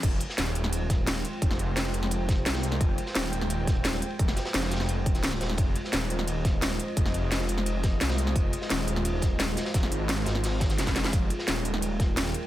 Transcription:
0.03 F1 G#3 F4 C5 G5, kick, closed hi-hat, crash, ride
0.20 closed hi-hat, ride
0.30 snare
0.38 D#1, snare, closed hi-hat, ride
0.55 closed hi-hat, ride
0.64 snare
0.73 closed hi-hat, ride
0.90 kick, snare, closed hi-hat, ride
0.98 ride
1.07 snare, closed hi-hat, ride
1.25 closed hi-hat, ride
1.33 ride
1.42 F1, kick, closed hi-hat, ride
1.51 snare
1.59 F1, closed hi-hat, ride
1.76 snare, closed hi-hat, ride
1.85 snare
1.94 closed hi-hat, ride
2.03 snare, ride
2.11 closed hi-hat, ride
2.29 kick, snare, closed hi-hat, ride
2.46 C2, snare, closed hi-hat, ride
2.55 snare, ride
2.63 closed hi-hat
2.71 snare, ride
2.81 F1, kick, closed hi-hat, ride
2.98 closed hi-hat, ride
3.06 snare
3.15 D#1, snare, closed hi-hat, ride
3.33 closed hi-hat, ride
3.41 snare
3.50 closed hi-hat, ride
3.67 kick, snare, closed hi-hat, ride
3.76 ride
3.84 snare, closed hi-hat, ride
4.02 closed hi-hat, ride
4.10 ride
4.19 F1, kick, closed hi-hat, ride
4.28 snare
4.36 snare, closed hi-hat, ride
4.45 snare, ride
4.54 F1, snare, closed hi-hat, ride
4.62 snare, ride
4.71 snare, closed hi-hat, ride
4.76 snare, ride
4.80 snare, ride
4.89 closed hi-hat, ride
5.06 kick, closed hi-hat, ride
5.14 snare, closed hi-hat
5.23 snare, closed hi-hat, open hi-hat
5.32 snare
5.41 D#1, snare, closed hi-hat, ride
5.50 snare
5.58 F1 D#5, kick, closed hi-hat, ride
5.76 closed hi-hat, ride
5.85 snare
5.92 D#1, snare, closed hi-hat, ride
6.10 closed hi-hat, ride
6.19 snare
6.28 closed hi-hat, ride
6.45 kick, snare, closed hi-hat, ride
6.54 ride
6.62 snare, closed hi-hat, ride
6.80 closed hi-hat, ride
6.88 ride
6.97 F1, kick, closed hi-hat, ride
7.06 snare
7.14 F1, closed hi-hat, ride
7.32 snare, closed hi-hat, ride
7.40 snare
7.49 closed hi-hat, ride
7.58 snare, ride
7.66 closed hi-hat, ride
7.83 kick, snare, closed hi-hat, ride
8.00 C2, snare, closed hi-hat, ride
8.10 snare, ride
8.18 closed hi-hat
8.27 snare, ride
8.36 F1, kick, closed hi-hat, ride
8.53 closed hi-hat, ride
8.62 snare
8.70 D#1, snare, closed hi-hat, ride
8.87 closed hi-hat, ride
8.96 snare
9.05 closed hi-hat, ride
9.22 kick, snare, closed hi-hat, ride
9.31 ride
9.39 snare, closed hi-hat, ride
9.57 snare, closed hi-hat, ride
9.65 snare, ride
9.74 F1, kick, snare, closed hi-hat, ride
9.83 snare
9.91 G#1, closed hi-hat, ride
10.09 snare, closed hi-hat, ride
10.18 snare
10.26 G#1, snare, closed hi-hat, ride
10.35 snare
10.44 snare, closed hi-hat, open hi-hat
10.60 kick, snare, closed hi-hat, ride
10.70 snare, closed hi-hat, ride
10.78 F1, snare, closed hi-hat, ride
10.87 kick, snare, closed hi-hat, ride
10.95 snare, closed hi-hat, ride
11.04 snare, closed hi-hat, ride
11.13 F1 A#4 G5, kick, closed hi-hat, ride
11.30 closed hi-hat, ride
11.39 snare
11.47 D#1, snare, closed hi-hat, ride
11.65 closed hi-hat, ride
11.74 snare
11.82 closed hi-hat, ride
12.00 kick, snare, closed hi-hat, ride
12.08 ride
12.17 snare, closed hi-hat, ride
12.34 closed hi-hat, ride
12.43 ride

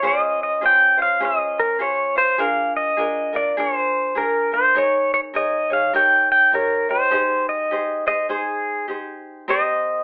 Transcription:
0.03 C#4 F4 G#4 C5
0.07 D#5
0.43 D#5
0.61 C#4 F4 G#4 C5
0.66 G5
0.98 C#4 F4 C5
1.02 F5
1.20 C#4 F4 G#4 C5
1.25 D#5
1.59 A#4
1.79 C#4 F4 G#4 C5 C#5
2.15 C#4 F4 C5
2.38 D4 F4 G#4 A#4 F5
2.77 D#5
2.97 D4 F4 G#4 A#4
3.33 D4 F4 A#4 D5
3.57 D4 F4 G#4 A#4 C5
4.15 D4 F4 G#4 A#4
4.52 D4 F4 A#4 C5
4.75 D#4 G#4 A#4 C#5
5.14 C#5
5.34 D#4 G#4 A#4 C#5 D#5
5.70 D#4 G#4 C#5 F5
5.93 D#4 G4 A#4 C#5 G5
6.32 G5
6.52 D#4 G4 A#4 C#5
6.89 D#4 G4 C5 C#5
7.11 D#4 G4 G#4 C5
7.49 D#5
7.71 D#4 G4 G#4 C5
8.06 D#4 G#4 C5 D#5
8.29 D#4 G#4 C5
8.88 D#4 G4 G#4 C5
9.48 C4 G4 A#4 C5 D#5

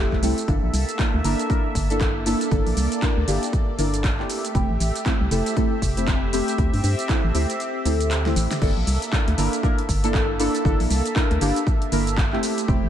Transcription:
Already playing: F1 A3 C4 E4 G4 E5
0.12 kick, clap
0.22 C2 A3 C4 E4 A4, open hi-hat, shaker
0.38 closed hi-hat, shaker
0.48 G1 A#3 D4 E4 A4 E5, kick, closed hi-hat, shaker
0.63 A#1
0.74 C2, open hi-hat, shaker
0.89 closed hi-hat, shaker
0.99 A#3 D4 E4 A4, kick, clap, closed hi-hat, shaker
1.14 D2
1.24 G1 A#3 D4 E4 A#4, open hi-hat, shaker
1.39 closed hi-hat, shaker
1.50 A#3 D4 E4 A#4, kick, closed hi-hat, shaker
1.75 G1, kick, open hi-hat, shaker
1.90 A#3 D4 E4 A4, closed hi-hat, shaker
2.01 kick, clap, closed hi-hat, shaker
2.26 A#3 D4 E4 A4, open hi-hat, shaker
2.41 closed hi-hat, shaker
2.51 G1 A#3 D4 E4 A4 D5, kick, closed hi-hat, shaker
2.67 A#1, open hi-hat
2.77 C2, open hi-hat, shaker
2.92 closed hi-hat, shaker
3.02 A#3 D4 E4 A#4, kick, clap, closed hi-hat, shaker
3.17 D2
3.28 G1 A#3 D4 E4 G4, open hi-hat, shaker
3.43 closed hi-hat, shaker
3.53 kick, closed hi-hat, shaker
3.78 G1 A#3 D4 E4 A#4, open hi-hat, shaker
3.94 closed hi-hat, shaker
4.04 kick, clap, closed hi-hat, shaker
4.19 A3 C4 E4 G4, clap
4.29 A3 G4 E5, open hi-hat, shaker
4.45 closed hi-hat, shaker
4.55 F1 A3 C4 E4 G4, kick, closed hi-hat, shaker
4.70 A1
4.80 A1, open hi-hat, shaker
4.96 closed hi-hat, shaker
5.06 A3 C4 E4 G4, kick, clap, closed hi-hat, shaker
5.21 C2
5.31 F1 A3 C4 E4 A4, open hi-hat, shaker
5.46 closed hi-hat, shaker
5.56 A3 C4 E4 A4, kick, closed hi-hat, shaker
5.82 F1, kick, open hi-hat, shaker
5.97 A3 C4 E4 G4, closed hi-hat, shaker
6.07 kick, clap, closed hi-hat, shaker
6.33 A3 C4 E4 G4, open hi-hat, shaker
6.48 closed hi-hat, shaker
6.58 D2 A3 C4 E4 G4, kick, closed hi-hat, shaker
6.73 G2, open hi-hat
6.84 G2, open hi-hat, shaker
6.99 closed hi-hat, shaker
7.09 A3 C4 E4 A4, kick, clap, closed hi-hat, shaker
7.24 A1
7.35 D2 A3 C4 E4 G4, open hi-hat, shaker
7.50 closed hi-hat, shaker
7.60 closed hi-hat, shaker
7.85 D2 A3 C4 E4 A4, open hi-hat, shaker
8.01 closed hi-hat, shaker
8.11 clap, closed hi-hat, shaker
8.26 A3 C4 E4 G4, snare
8.36 A1, open hi-hat, shaker
8.51 snare, closed hi-hat, shaker
8.62 G1 A#3 D4 E4 A4 E5, kick, crash, shaker
8.77 A#1
8.87 C2, open hi-hat, shaker
9.02 closed hi-hat, shaker
9.12 A#3 D4 E4 A4, kick, clap, shaker
9.28 D2, closed hi-hat
9.38 G1 A#3 D4 E4 A#4, open hi-hat, shaker
9.53 closed hi-hat, shaker
9.63 A#3 D4 E4 A#4, kick, shaker
9.78 closed hi-hat
9.89 G1, kick, open hi-hat, shaker
10.04 A#3 D4 E4 A4, closed hi-hat, shaker
10.14 kick, clap, shaker
10.40 A#3 D4 E4 A4, open hi-hat, shaker
10.55 closed hi-hat, shaker
10.65 G1 A#3 D4 E4 A4, kick, shaker
10.80 A#1, open hi-hat
10.90 C2, open hi-hat, shaker
11.06 closed hi-hat, shaker
11.16 A#3 D4 E4 A#4, kick, clap, shaker
11.31 D2, closed hi-hat
11.41 G1 A#3 D4 E4 G4, open hi-hat, shaker
11.56 closed hi-hat, shaker
11.67 kick, shaker
11.82 closed hi-hat
11.92 G1 A#3 D4 E4 A#4, open hi-hat, shaker
12.07 closed hi-hat, shaker
12.18 kick, clap, shaker
12.32 A3 C4 E4 G4, clap
12.43 A3 G4, open hi-hat, shaker
12.58 closed hi-hat, shaker
12.68 F1 A3 C4 E4 G4, kick, shaker
12.83 A1

